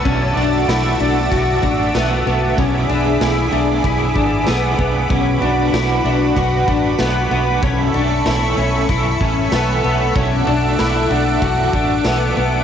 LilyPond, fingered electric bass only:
\new Staff \with { instrumentName = "Fingered electric bass" } { \clef bass \time 4/4 \key d \lydian \tempo 4 = 95 b,,8 b,,8 b,,8 b,,8 b,,8 a,,8 b,,8 b,,8 | b,,8 b,,8 b,,8 b,,8 b,,8 gis,,8 b,,8 b,,8 | b,,8 b,,8 b,,8 b,,8 b,,8 a,,8 b,,8 b,,8 | b,,8 b,,8 b,,8 b,,8 b,,8 a,,8 b,,8 b,,8 |
b,,8 b,,8 b,,8 b,,8 b,,8 a,,8 b,,8 b,,8 | }